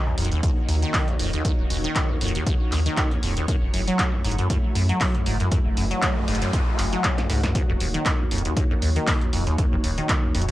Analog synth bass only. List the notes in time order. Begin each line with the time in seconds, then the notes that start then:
0.18 D#1
0.69 D#2
1.19 D#1
1.59 D#1
1.70 D#1
2.21 D#1
2.72 D#2
3.23 D#1
3.62 F#1
3.74 F#1
4.24 F#1
4.75 F#2
5.26 F#1
5.66 F#1
5.77 F#1
6.28 F#1
6.79 F#1
7.30 C#2
7.69 D#1
7.80 D#1
8.31 D#1
8.82 D#2
9.33 D#1
9.72 D#1
9.84 D#1
10.35 D#1